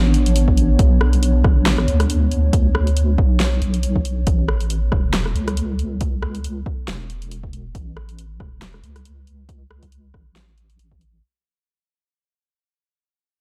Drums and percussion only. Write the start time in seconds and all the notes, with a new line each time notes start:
0.14 closed hi-hat
0.26 closed hi-hat
0.36 closed hi-hat
0.48 kick
0.57 closed hi-hat
0.79 kick, closed hi-hat
1.01 cross-stick
1.13 closed hi-hat
1.23 closed hi-hat
1.44 kick, cross-stick
1.66 snare, closed hi-hat
1.78 cross-stick
1.88 closed hi-hat
2.00 cross-stick, closed hi-hat
2.10 closed hi-hat
2.31 closed hi-hat
2.53 kick, closed hi-hat
2.75 cross-stick
2.87 closed hi-hat
2.97 closed hi-hat
3.18 kick
3.40 snare, closed hi-hat
3.62 closed hi-hat
3.74 closed hi-hat
3.83 closed hi-hat
3.96 kick
4.05 closed hi-hat
4.27 kick, closed hi-hat
4.48 cross-stick
4.61 closed hi-hat
4.70 closed hi-hat
4.92 kick, cross-stick
5.14 snare, closed hi-hat
5.26 cross-stick
5.36 closed hi-hat
5.48 cross-stick, closed hi-hat
5.57 closed hi-hat
5.79 closed hi-hat
6.01 kick, closed hi-hat
6.22 cross-stick
6.35 closed hi-hat
6.44 closed hi-hat
6.66 kick
6.88 snare, closed hi-hat
7.10 closed hi-hat
7.22 closed hi-hat
7.31 closed hi-hat
7.43 kick
7.53 closed hi-hat
7.75 kick, closed hi-hat
7.97 cross-stick
8.09 closed hi-hat
8.19 closed hi-hat
8.40 kick, cross-stick
8.62 snare, closed hi-hat
8.74 cross-stick
8.84 closed hi-hat
8.96 cross-stick, closed hi-hat
9.05 closed hi-hat
9.27 closed hi-hat
9.49 kick, closed hi-hat
9.71 cross-stick
9.83 kick, closed hi-hat
9.92 closed hi-hat
10.14 kick, cross-stick
10.36 snare, closed hi-hat
10.58 closed hi-hat
10.70 closed hi-hat
10.79 closed hi-hat
10.92 kick
11.01 closed hi-hat